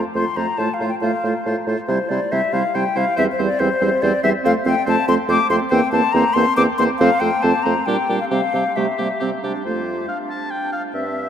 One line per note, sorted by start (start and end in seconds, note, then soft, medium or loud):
0.15 0.25 F2 medium
0.15 0.25 A3 medium
0.15 0.27 F4 medium
0.15 0.26 C5 medium
0.15 0.38 C6 medium
0.36 0.46 F2 medium
0.36 0.47 A3 medium
0.36 0.48 F4 medium
0.36 0.47 C5 medium
0.36 0.59 A#5 loud
0.58 0.68 A2 medium
0.58 0.70 A3 medium
0.58 0.70 F4 medium
0.58 0.69 C5 medium
0.58 0.75 A5 loud
0.74 0.88 F5 medium
0.80 0.90 A2 medium
0.80 0.91 A3 medium
0.80 0.91 F4 medium
0.80 0.90 C5 medium
0.89 0.95 G5 medium
1.01 1.11 A2 medium
1.01 1.13 A3 medium
1.01 1.12 F4 medium
1.01 1.12 C5 medium
1.01 1.66 F5 medium
1.24 1.34 A2 medium
1.24 1.34 A3 medium
1.24 1.35 F4 medium
1.24 1.34 C5 medium
1.46 1.56 A2 medium
1.46 1.56 A3 medium
1.46 1.57 F4 medium
1.46 1.56 C5 medium
1.67 1.77 A2 medium
1.67 1.77 A3 medium
1.67 1.79 F4 medium
1.67 1.78 C5 medium
1.87 1.98 C3 medium
1.87 1.99 G3 medium
1.87 1.99 E4 medium
1.87 2.10 C5 loud
1.87 1.99 C5 medium
2.09 2.20 C3 medium
2.09 2.20 G3 medium
2.09 2.20 E4 medium
2.09 2.20 C5 medium
2.09 2.33 D5 loud
2.31 2.42 C3 medium
2.31 2.42 G3 medium
2.31 2.42 E4 medium
2.31 2.41 C5 medium
2.31 2.54 E5 loud
2.53 2.62 C3 medium
2.53 2.63 G3 medium
2.53 2.64 E4 medium
2.53 2.63 C5 medium
2.53 2.77 F5 loud
2.74 2.84 C3 medium
2.74 2.85 G3 medium
2.74 2.85 E4 medium
2.74 2.84 C5 medium
2.74 2.99 G5 loud
2.95 3.06 C3 medium
2.95 3.05 G3 medium
2.95 3.05 E4 medium
2.95 3.05 C5 medium
2.95 3.17 F5 loud
3.16 3.27 E2 medium
3.16 3.28 G3 medium
3.16 3.27 C4 medium
3.16 3.26 C5 medium
3.16 3.24 E5 loud
3.32 3.45 C5 medium
3.39 3.49 E2 medium
3.39 3.49 G3 medium
3.39 3.49 C4 medium
3.39 3.48 C5 medium
3.45 3.61 D5 loud
3.59 3.69 E2 medium
3.59 3.70 G3 medium
3.59 3.70 C4 medium
3.59 3.69 C5 medium
3.59 4.04 C5 loud
3.81 3.91 E2 medium
3.81 3.91 G3 medium
3.81 3.91 C4 medium
3.81 3.90 C5 medium
4.02 4.12 E2 medium
4.02 4.13 G3 medium
4.02 4.13 C4 medium
4.02 4.12 C5 medium
4.02 4.23 D5 loud
4.23 4.33 E2 medium
4.23 4.33 G3 medium
4.23 4.33 C4 medium
4.23 4.33 C5 medium
4.23 4.29 E5 loud
4.44 4.54 F2 loud
4.44 4.55 A3 medium
4.44 4.54 C4 medium
4.44 4.54 C5 medium
4.44 4.51 F5 loud
4.65 4.75 F2 medium
4.65 4.76 A3 medium
4.65 4.75 C4 medium
4.65 4.76 C5 medium
4.65 4.87 G5 loud
4.86 4.96 F2 loud
4.86 4.97 A3 medium
4.86 4.96 C4 medium
4.86 4.96 C5 medium
4.86 5.08 A5 loud
5.08 5.17 F2 medium
5.08 5.18 A3 medium
5.08 5.17 C4 medium
5.08 5.18 C5 medium
5.08 5.14 C6 loud
5.28 5.38 F2 loud
5.28 5.40 A3 medium
5.28 5.39 C4 medium
5.28 5.39 C5 medium
5.28 5.50 D6 loud
5.49 5.59 F2 loud
5.49 5.61 A3 medium
5.49 5.61 C4 medium
5.49 5.59 C5 medium
5.49 5.56 C6 loud
5.70 5.81 E2 loud
5.70 5.82 A#3 medium
5.70 5.82 C4 loud
5.70 5.80 C5 loud
5.70 5.92 G5 loud
5.92 6.02 E2 loud
5.92 6.03 A#3 medium
5.92 6.03 C4 medium
5.92 6.02 C5 medium
5.92 6.14 A5 loud
6.13 6.23 E2 loud
6.13 6.25 A#3 medium
6.13 6.25 C4 medium
6.13 6.25 C5 medium
6.13 6.35 A#5 loud
6.33 6.45 E2 medium
6.33 6.46 A#3 medium
6.33 6.46 C4 medium
6.33 6.46 C5 medium
6.33 6.56 C6 loud
6.57 6.67 E2 loud
6.57 6.67 A#3 medium
6.57 6.67 C4 medium
6.57 6.67 C5 medium
6.57 6.63 D6 loud
6.78 6.88 E2 medium
6.78 6.88 A#3 medium
6.78 6.88 C4 medium
6.78 6.89 C5 medium
6.78 6.84 C6 loud
6.99 7.10 F2 loud
6.99 7.10 A3 medium
6.99 7.10 C4 loud
6.99 7.10 C5 medium
6.99 7.22 F5 loud
7.20 7.31 F2 medium
7.20 7.31 A3 medium
7.20 7.31 C4 medium
7.20 7.30 C5 medium
7.20 7.44 G5 loud
7.42 7.53 F2 loud
7.42 7.53 A3 medium
7.42 7.53 C4 medium
7.42 7.52 C5 medium
7.42 7.64 A5 loud
7.63 7.75 F2 medium
7.63 7.75 A3 medium
7.63 7.75 C4 medium
7.63 7.75 C5 medium
7.63 7.87 A#5 loud
7.86 7.97 A#2 medium
7.86 7.97 G3 medium
7.86 7.97 D4 medium
7.86 7.97 G4 medium
7.86 8.19 G5 medium
8.09 8.19 A#2 medium
8.09 8.19 G3 medium
8.09 8.20 D4 medium
8.09 8.20 G4 medium
8.20 8.29 F5 medium
8.29 8.41 C3 medium
8.29 8.42 G3 medium
8.29 8.42 C4 medium
8.29 8.41 G4 medium
8.29 8.77 F5 loud
8.53 8.63 C3 medium
8.53 8.65 G3 medium
8.53 8.65 C4 medium
8.53 8.64 G4 medium
8.76 8.86 C3 medium
8.76 8.87 G3 medium
8.76 8.87 A3 medium
8.76 8.86 G4 medium
8.76 9.43 E5 medium
8.98 9.09 C3 medium
8.98 9.10 G3 medium
8.98 9.09 A#3 medium
8.98 9.08 G4 medium
9.20 9.31 C3 medium
9.20 9.32 G3 medium
9.20 9.31 C4 medium
9.20 9.30 G4 medium
9.43 9.54 C3 medium
9.43 9.54 G3 medium
9.43 9.65 D4 medium
9.43 9.53 G4 medium
9.65 10.02 F2 soft
9.65 9.81 A3 soft
9.65 10.09 F4 soft
9.65 10.05 C5 medium
9.65 10.10 C5 medium
10.08 10.95 D4 medium
10.08 10.32 F5 soft
10.08 10.18 F5 medium
10.30 10.52 A5 medium
10.30 10.51 A5 medium
10.51 10.72 G5 medium
10.51 10.75 G5 medium
10.73 10.82 F5 medium
10.73 10.92 F5 medium
10.93 11.29 G2 medium
10.93 11.29 C4 soft
10.93 11.09 C4 soft
10.93 11.29 E5 medium